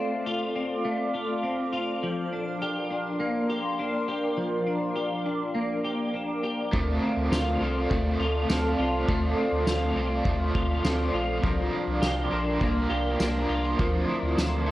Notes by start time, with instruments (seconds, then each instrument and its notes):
Already playing: clean electric guitar A3 C4 F4, ambient pad A4 D5 F5 D6
0.26 clean electric guitar F4
0.55 clean electric guitar C4
0.85 clean electric guitar A3
1.14 clean electric guitar F4
1.43 clean electric guitar C4
1.73 clean electric guitar F4
2.03 clean electric guitar F3, ambient pad A#4 D5 C6
2.32 clean electric guitar D4
2.61 clean electric guitar G4
2.90 clean electric guitar D4
3.20 clean electric guitar A#3
3.50 clean electric guitar G4
3.79 clean electric guitar D4
4.08 clean electric guitar G4
4.37 clean electric guitar F3, ambient pad D6
4.67 clean electric guitar D4
4.96 clean electric guitar G4
5.26 clean electric guitar D4
5.55 clean electric guitar A#3
5.84 clean electric guitar G4
6.14 clean electric guitar D4
6.43 clean electric guitar G4
6.72 sub bass D2, overdriven electric guitar D3 A3 C4 F4 A4, clean electric guitar A3, ambient pad A4 D5 F5 C6, kick, ride
7.03 clean electric guitar C4, ride
7.17 sub bass D2
7.31 sub bass D2, clean electric guitar F4, snare, ride, tambourine
7.61 sub bass C2, clean electric guitar C4, overdriven electric guitar C4 F4 A4, ride
7.89 sub bass D2, overdriven electric guitar A3 C4 F4 A4, clean electric guitar A3, kick, ride
8.20 sub bass D2, clean electric guitar F4, ride
8.49 sub bass D2, overdriven electric guitar A3 C4 F4 A4, clean electric guitar C4, snare, ride, tambourine
8.79 sub bass C2, clean electric guitar F4, ride
9.07 sub bass D2, overdriven electric guitar D3 A3 C4 F4 A4, clean electric guitar A3, kick, ride
9.38 clean electric guitar C4, ride
9.52 sub bass D2
9.67 sub bass D2, clean electric guitar F4, snare, ride, tambourine
9.96 sub bass C2, clean electric guitar C4, overdriven electric guitar C4 F4 A4, ride
10.25 sub bass D2, clean electric guitar A3, overdriven electric guitar A3 C4 F4, kick, ride
10.30 overdriven electric guitar A4
10.55 sub bass D2, clean electric guitar F4, kick
10.84 sub bass D2, overdriven electric guitar A3 C4 F4 A4, clean electric guitar C4, snare, ride, tambourine
11.13 sub bass A#1, clean electric guitar F4, ride
11.43 sub bass C2, overdriven electric guitar C3 F3 G3 D4 F4 A#4, clean electric guitar F3, ambient pad A#4, kick, ride
11.73 clean electric guitar D4, ride
11.87 sub bass C2
12.02 sub bass C2, clean electric guitar G4, snare, tambourine
12.31 sub bass A#1, overdriven electric guitar G3 D4 F4 A#4, clean electric guitar D4, ride
12.61 sub bass C2, overdriven electric guitar G3 D4 F4 A#4, clean electric guitar A#3, kick, ride
12.90 sub bass C2, clean electric guitar G4, ride
13.20 sub bass C2, overdriven electric guitar G3 D4 F4 A#4, clean electric guitar D4, snare, ride, tambourine
13.49 sub bass C2, clean electric guitar F4, ride
13.64 clean electric guitar G4
13.78 sub bass D2, overdriven electric guitar D3 F3 A3 C4 E4 A4, clean electric guitar F3, ambient pad F3 D5 E5, kick
14.09 clean electric guitar E4, ride
14.22 sub bass D2
14.37 sub bass D2, clean electric guitar A4, snare, ride, tambourine
14.66 sub bass C2, overdriven electric guitar C4 E4 A4, clean electric guitar E4, ride